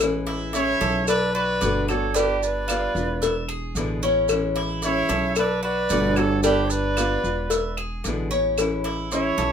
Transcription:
Already playing: A1
0.00 E3 G#3 C#4 E4, cowbell, claves, maracas
0.27 E4, cowbell
0.53 E3 G#3 C#4 E4 C#5 E5, cowbell, maracas
0.81 B1 G#3 C#4 E4 A4, cowbell, maracas
1.08 B4 D5, muted nylon-string guitar stroke, cowbell, claves, maracas
1.34 F#4 B4 D5
1.61 G1 B2 D3 A3 B3 F#4 D5, cowbell, maracas
1.88 A3 B3 F#4 A4 C#5, cowbell, claves, maracas
2.14 G3 B3 D4 F4 G4 B4, cowbell, maracas
2.42 B4 D5, maracas
2.68 G3 B3 F4, cowbell, claves, maracas
2.95 E1 B3 F4, maracas
3.22 E5, muted nylon-string guitar stroke, cowbell, maracas
3.48 G#4, claves
3.75 A1 B2 D3 G#3 B3 E4, cowbell, maracas
4.03 G#3 B3 C#4 E4, maracas
4.29 E3 G#3 C#4 E4, cowbell, claves, maracas
4.56 E4, cowbell
4.82 E3 G#3 C#4 C#5 E5, cowbell, maracas
4.86 E4
5.09 B1 C#4 E4 A4, cowbell, maracas
5.13 G#3
5.36 B4 D5, muted nylon-string guitar stroke, cowbell, claves, maracas
5.63 F#4 B4 D5
5.89 G1 B2 D3 A3 B3 F#4 D5, cowbell, maracas
6.16 A3 B3 F#4 A4 C#5, cowbell, claves, maracas
6.43 G3 B3 D4 F4 G4 B4, cowbell, maracas
6.70 B4 D5, maracas
6.97 G3 B3 F4, cowbell, claves, maracas
7.24 E1 B3 F4, maracas
7.50 E5, muted nylon-string guitar stroke, cowbell, maracas
7.77 G#4, claves
8.04 A1 B2 D3 G#3 B3 E4, cowbell, maracas
8.31 G#3 B3 C#4 E4, maracas
8.58 E3 G#3 C#4 E4, cowbell, claves, maracas
8.84 E4, cowbell
9.11 E3 G#3 C#4 E4 C#5 E5, cowbell, maracas
9.38 B1 G#3 C#4 E4 A4, cowbell, maracas

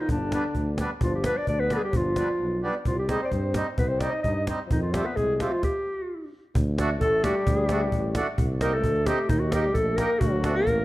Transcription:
0.00 D#3 D#4
0.09 G1 D3 D4, cajon bass
0.32 G3 B3 D4, cajon slap
0.55 D2, cajon bass, cajon slap
0.78 G3 B3 D4, cajon slap
1.01 G1 F3 F4, cajon bass
1.15 G4
1.24 G3 B3 D4 B4, cajon slap
1.36 D4 D5, cajon slap
1.47 D2 D4 D5, cajon bass
1.59 B3 B4
1.70 G3 B3 D4 G#4, cajon slap
1.82 G3 G4
1.93 G1 F3 F4, cajon bass
2.16 G3 B3 D4, cajon slap
2.40 B1
2.62 G3 B3 D4
2.85 C2 F3 F4, cajon bass
2.97 G3 G4
3.08 G3 G#3 C4 D#4 G#4, cajon slap
3.20 C4 C5
3.24 C5 D5
3.32 G2 C4 C5, cajon bass, cajon slap
3.54 G3 C4 D#4, cajon slap
3.78 C2 B3 B4, cajon bass
3.89 C4 C5
3.99 G3 C4 D#4 D5, cajon slap
4.11 D#4 D#5
4.23 G2 D#4 D#5, cajon bass
4.47 G3 C4 D#4, cajon slap
4.66 F3
4.71 F2 D#3 D#4, cajon bass
4.82 F4
4.92 G3 A3 C4 F4 G4, cajon slap
5.04 B3 B4
5.16 C2 G#3 G#4, cajon bass
5.36 A3 G#4, cajon slap
5.40 C4 F4 G4
5.51 F3 F4
5.63 G4, cajon bass, cajon slap
6.55 D2, cajon bass
6.78 A3 D4 F#4, cajon slap
7.01 A1 A3 A4, cajon bass
7.23 G3 A3 D4 F#4 G4, cajon slap
7.46 D2, cajon bass
7.69 A3 D4 F#4, cajon slap
7.92 A1, cajon bass
8.15 A3 D4 F#4, cajon slap
8.38 C2, cajon bass
8.61 A#3 C4 D#4 G4 A#4, cajon slap
8.73 A3 A4
8.83 D2, cajon bass
8.95 cajon slap
9.06 C4 D#4 G4, cajon slap
9.29 D#2 D#3 D#4, cajon bass
9.39 F#4
9.50 A#3 D#4 G4 A4, cajon slap
9.62 G3 G4
9.73 A#1 A3 A4, cajon bass
9.96 A#3 D#4 G4 A#4, cajon slap
10.19 D2 F#3 F#4, cajon bass
10.43 A3 D4 F#4, cajon slap
10.48 C4
10.55 A#3 A#4
10.67 A1, cajon bass

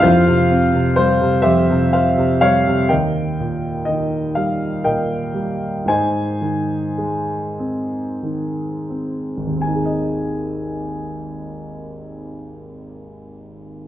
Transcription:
Already playing: F5
0.02 F2 F4 C5
0.27 C3
0.51 C4
0.74 C3
0.96 G3 C5
1.21 C3
1.42 F2 G4 C5 E5
1.70 C3
1.93 C5 F5
2.18 C3
2.41 G3 C#5 F5
2.67 C3
2.89 D#2 A#4 D#5 G5
3.40 A#2
3.85 D#3 D#5
4.35 G3 F5
4.84 A#2 A#4 D#5 G5
5.34 G3
5.86 G#2 C5 D#5 G#5
6.41 D#3
6.98 G#3
7.59 C4
8.23 D#3
8.90 C4
9.37 G#1
9.47 D#2
9.56 C4
9.61 G#5
9.66 D#4
9.75 G#4
9.86 D#5

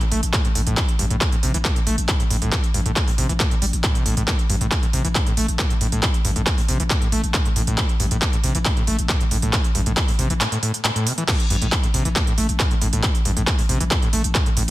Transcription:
0.01 A#2, closed hi-hat
0.11 A1 A3, open hi-hat
0.23 A1, closed hi-hat
0.33 A2, kick, clap, closed hi-hat
0.45 A2, closed hi-hat
0.55 A1 A2, open hi-hat
0.67 A1 A2, closed hi-hat
0.77 kick, clap, closed hi-hat
0.89 closed hi-hat
0.99 A1 G2, open hi-hat
1.10 A1 A2, closed hi-hat
1.21 kick, clap, closed hi-hat
1.32 A2, closed hi-hat
1.43 A1 C3, open hi-hat
1.54 A1 E3, closed hi-hat
1.65 A2, kick, clap, closed hi-hat
1.76 A#2, closed hi-hat
1.87 A1 A3, open hi-hat
1.98 A1, closed hi-hat
2.09 A2, kick, clap, closed hi-hat
2.20 A2, closed hi-hat
2.30 A1 A2, open hi-hat
2.42 A1 A2, closed hi-hat
2.52 kick, clap, closed hi-hat
2.64 closed hi-hat
2.74 A1 G2, open hi-hat
2.85 A1 A2, closed hi-hat
2.96 kick, clap, closed hi-hat
3.07 A2, open hi-hat
3.18 A1 C3, open hi-hat
3.29 A1 E3, closed hi-hat
3.40 A2, kick, clap, closed hi-hat
3.51 A#2, closed hi-hat
3.62 A1 G3, open hi-hat
3.73 A1, closed hi-hat
3.84 A2, kick, clap, closed hi-hat
3.95 C3, closed hi-hat
4.06 A1 A2, open hi-hat
4.17 A1 A2, closed hi-hat
4.28 A2, kick, clap, closed hi-hat
4.39 closed hi-hat
4.50 A1 G2, open hi-hat
4.61 A1 A2, closed hi-hat
4.71 kick, clap, closed hi-hat
4.83 A2, closed hi-hat
4.93 A1 C3, open hi-hat
5.05 A1 E3, closed hi-hat
5.15 A2, kick, clap, closed hi-hat
5.26 A2, closed hi-hat
5.37 A1 A3, open hi-hat
5.48 A1, closed hi-hat
5.59 A2, kick, clap, closed hi-hat
5.70 A2, closed hi-hat
5.81 A1 A2, open hi-hat
5.92 A1 A2, closed hi-hat
6.03 kick, clap, closed hi-hat
6.14 closed hi-hat
6.25 A1 G2, open hi-hat
6.36 A1 A2, closed hi-hat
6.47 kick, clap, closed hi-hat
6.58 A2, open hi-hat
6.68 A1 C3, open hi-hat
6.80 A1 E3, closed hi-hat
6.90 A2, kick, clap, closed hi-hat
7.02 A2, closed hi-hat
7.12 A1 A3, open hi-hat
7.23 A1, closed hi-hat
7.34 A2, kick, clap, closed hi-hat
7.45 A2, closed hi-hat
7.56 A1 A2, open hi-hat
7.67 A1 A2, closed hi-hat
7.78 kick, clap, closed hi-hat
7.89 closed hi-hat
8.00 A1 G2, open hi-hat
8.11 A1 A2, closed hi-hat
8.22 kick, clap, closed hi-hat
8.33 A2, closed hi-hat
8.44 A1 C3, open hi-hat
8.55 A1 E3, closed hi-hat
8.65 A2, kick, clap, closed hi-hat
8.77 A2, closed hi-hat
8.87 A1 A3, open hi-hat
8.99 A1, closed hi-hat
9.09 A2, kick, clap, closed hi-hat
9.21 A2, closed hi-hat
9.31 A1 A2, open hi-hat
9.42 A1 A2, closed hi-hat
9.53 kick, clap, closed hi-hat
9.64 closed hi-hat
9.75 A1 G2, open hi-hat
9.86 A1 A2, closed hi-hat
9.97 kick, clap, closed hi-hat
10.08 A2, open hi-hat
10.19 A1 C3, open hi-hat
10.30 A1 E3, closed hi-hat
10.41 A2, clap, closed hi-hat
10.52 A2, closed hi-hat
10.63 A2, open hi-hat
10.74 closed hi-hat
10.85 A2, clap, closed hi-hat
10.96 A2, closed hi-hat
11.07 C3, open hi-hat
11.18 E3, closed hi-hat
11.28 A2, kick, clap, closed hi-hat, crash
11.40 closed hi-hat
11.50 A1 G2, open hi-hat
11.61 A1 A2, closed hi-hat
11.72 kick, clap, closed hi-hat
11.83 A2, closed hi-hat
11.94 A1 C3, open hi-hat
12.05 A1 E3, closed hi-hat
12.16 A2, kick, clap, closed hi-hat
12.27 A2, closed hi-hat
12.38 A1 A3, open hi-hat
12.49 A1, closed hi-hat
12.60 A2, kick, clap, closed hi-hat
12.71 A2, closed hi-hat
12.82 A1 A2, open hi-hat
12.93 A1 A2, closed hi-hat
13.03 kick, clap, closed hi-hat
13.15 closed hi-hat
13.25 A1 G2, open hi-hat
13.37 A1 A2, closed hi-hat
13.47 kick, clap, closed hi-hat
13.59 A2, open hi-hat
13.69 A1 C3, open hi-hat
13.80 A1 E3, closed hi-hat
13.91 A2, kick, clap, closed hi-hat
14.02 A2, closed hi-hat
14.13 A1 A3, open hi-hat
14.24 A1, closed hi-hat
14.35 A2, kick, clap, closed hi-hat
14.46 A2, closed hi-hat
14.57 A1 A2, open hi-hat

